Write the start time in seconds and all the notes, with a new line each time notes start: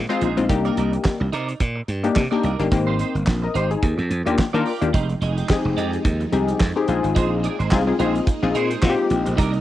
0.09 G#3 C4 D#4 F4 G#4 C5, closed hi-hat
0.21 A#1 D#4 G#4 C5, closed hi-hat
0.37 A#1 G#3 C4 D#4 F4, muted clean electric guitar stroke, closed hi-hat
0.49 C2 A#3 D4 D#4 G4, muted clean electric guitar stroke, kick, closed hi-hat
0.65 D#4 A#4 D5, closed hi-hat
0.77 C2 D#4 A#4 D5, closed hi-hat
0.92 muted clean electric guitar stroke, closed hi-hat
1.05 kick, snare, clap
1.20 C2, muted clean electric guitar stroke
1.32 C3 D#4 A#4 D5, closed hi-hat
1.48 muted clean electric guitar stroke, closed hi-hat
1.60 A#2, muted clean electric guitar stroke, kick, closed hi-hat
1.75 muted clean electric guitar stroke
1.88 G2, closed hi-hat
2.03 A#3 D4 D#4 G4, muted clean electric guitar stroke, closed hi-hat
2.16 C3, muted clean electric guitar stroke, kick, snare, clap
2.31 A#3 D4 D#4 G4 A#4 D5
2.43 C2 D#4 A#4 D5, closed hi-hat
2.59 G1 A#3 D4 D#4 G4, muted clean electric guitar stroke, closed hi-hat
2.71 G#1 A#3 C4 D#4 G4, muted clean electric guitar stroke, kick, closed hi-hat
2.87 D#4 G4 C5
2.99 D#4 G4 C5, closed hi-hat
3.15 G1, muted clean electric guitar stroke, closed hi-hat
3.27 A#1, kick, snare, clap
3.42 A#4 D#5, muted clean electric guitar stroke
3.54 G#1 D#4 G4 C5, closed hi-hat
3.70 D#4 G#4, muted clean electric guitar stroke, closed hi-hat
3.82 D#2, muted clean electric guitar stroke, kick, closed hi-hat
3.98 F2, muted clean electric guitar stroke, closed hi-hat
4.10 F2, closed hi-hat
4.26 D#2 A#3 D4 F4 G4, muted clean electric guitar stroke, closed hi-hat
4.38 muted clean electric guitar stroke, kick, snare, clap
4.53 D#3 A#3 D4 F4 G4 A#4 D5, closed hi-hat
4.65 F4 G4 D5, open hi-hat
4.81 D#2 A#3 D4 F4 G4, muted clean electric guitar stroke, closed hi-hat
4.93 F1 F3 G#3 D#4 G4 G5, kick, closed hi-hat
5.09 muted clean electric guitar stroke, closed hi-hat
5.21 F1 G#3 D#4 G#4, closed hi-hat
5.37 G#3 D#4 G4, closed hi-hat
5.49 C4 D#4 G4 G#4, muted clean electric guitar stroke, kick, snare, clap
5.65 F1, muted clean electric guitar stroke
5.77 F2 G#3 D#4 G4, closed hi-hat
5.93 muted clean electric guitar stroke, closed hi-hat
6.05 D#2, muted clean electric guitar stroke, kick, closed hi-hat
6.21 muted clean electric guitar stroke, closed hi-hat
6.32 C2 C4 D#4 G4 G#4, closed hi-hat
6.48 muted clean electric guitar stroke, closed hi-hat
6.60 F2, muted clean electric guitar stroke, kick, snare, clap
6.76 C4 D#4 G4 G#4, muted clean electric guitar stroke
6.88 A#1 G#3 A#3 C4 D#4 F4 G#4, closed hi-hat
7.03 G#1, muted clean electric guitar stroke, closed hi-hat
7.15 A#1 D#4 G#4 C5, kick, closed hi-hat
7.31 muted clean electric guitar stroke
7.43 D#4 G#4 D5, closed hi-hat
7.59 G#1 D#4 G#4 C5, closed hi-hat
7.71 C2 C4 D#4 F4 G#4, kick, snare, clap
7.87 C4 D#4 F4 G#4, muted clean electric guitar stroke
7.99 A#1 C4 D#4 F4 G#4 C5, closed hi-hat
8.15 muted clean electric guitar stroke, closed hi-hat
8.27 muted clean electric guitar stroke, kick, closed hi-hat
8.42 A#1 C4 D#4 F4 G#4, muted clean electric guitar stroke
8.55 A#2 D#4 G#4 C5, closed hi-hat
8.70 D#4 G#4 C5, closed hi-hat
8.82 A#2 C4 D#4 F4 F#4, muted clean electric guitar stroke, kick, snare, clap
8.90 G4
8.98 muted clean electric guitar stroke
9.10 A#1, closed hi-hat
9.26 A#1, muted clean electric guitar stroke, closed hi-hat
9.37 C2 C3 D#3 D#4 A#4 D5, kick, closed hi-hat
9.53 muted clean electric guitar stroke, closed hi-hat